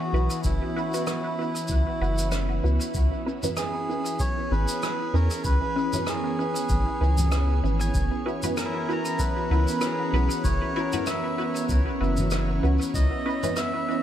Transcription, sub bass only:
0.13 B1
0.44 F#1
1.69 C#2
2.01 F#1
2.64 C#2
2.95 C#2
4.51 G#1
5.13 E2
5.45 C#2
6.69 G#1
7.01 C#2
7.63 G#1
7.95 F#1
9.51 C#2
10.13 B1
10.44 F#1
11.69 C#2
12.01 F#1
12.63 C#2
12.94 C#2

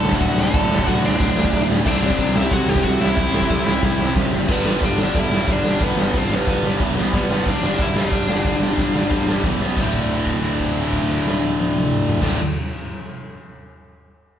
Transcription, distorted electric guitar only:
Already playing: D2 A2 D3
0.53 D2 A2 D3
1.85 C3 G3 C4
3.16 C3 G3 C4
4.48 G2 D3 G3
4.66 G2 D3 G3
4.82 G2 D3 G3
4.98 G2 D3 G3
5.14 G2 D3 G3
5.31 G2 D3 G3
5.47 G2 D3 G3
5.64 G2 D3 G3
5.80 G2 D3 G3
5.96 G2 D3 G3
6.13 G2 D3 G3
6.31 G2 D3 G3
6.47 G2 D3 G3
6.63 G2 D3 G3
6.80 E2 B2 E3
6.96 B2 F#3 B3
7.12 G2 D3 G3
7.30 G2 D3 G3
7.46 G2 D3 G3
7.62 G2 D3 G3
7.79 G2 D3 G3
7.95 G2 D3 G3
8.11 G2 D3 G3
8.29 G2 D3 G3
8.45 G2 D3 G3
8.60 G2 D3 G3
8.77 G2 D3 G3
8.93 G2 D3 G3
9.11 G2 D3 G3
9.28 G2 D3 G3
9.44 E2 B2 E3
9.61 B2 F#3 B3
9.77 D2 A2
9.81 D3
12.20 D2 A2 D3

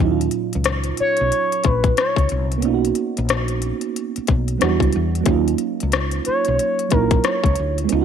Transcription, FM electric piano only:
Already playing: A#2 F#3
0.00 C#4 D#4
0.05 E4
0.11 F4
2.58 A#3 B3
2.63 C#4 D#4
2.68 F4
2.74 F#4
4.58 F#3 B3 D4 E4
4.63 G3 F#4
5.21 F#3 A#3
5.26 C#4 D#4
5.31 F4
6.89 F#3 A#3 C#4 D#4
6.94 E4
7.00 F4
7.84 G#3 B3
7.89 C#4 D#4
7.95 F4
8.01 F#4

